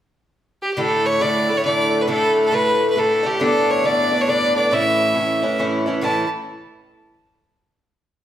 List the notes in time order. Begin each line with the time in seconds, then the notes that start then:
0.62 G4
0.74 A2 D3 A3 G4
0.78 E4 A4
1.06 C#5
1.20 A2 D3 A3 E4 D5
1.48 D3 A3 E4
1.57 C#5
1.64 A2 D3 A3 E4 D5
2.01 B4
2.07 A2 D3 A3 E4 A4
2.46 A4
2.51 A2 D3 A3 E4 B4
2.90 B4
2.96 A2 D3 A3 E4 A4
3.23 D3 A3 E4 G4
3.40 G2 D3 B3 D4 A4
3.70 C#5
3.83 G2 D3 B3 D4 D5
4.11 D3 B3 D4
4.21 C#5
4.27 G2 D3 B3 D4 D5
4.55 D3 B3 D4 D5
4.71 A2 E3 C#4 E4 E5
5.14 A2 E3 C#4 E4
5.42 E3 C#4 E4
5.58 A2 E3 C#4 E4
5.86 E3 C#4 E4
6.01 A2 E3 C#4 E4 A5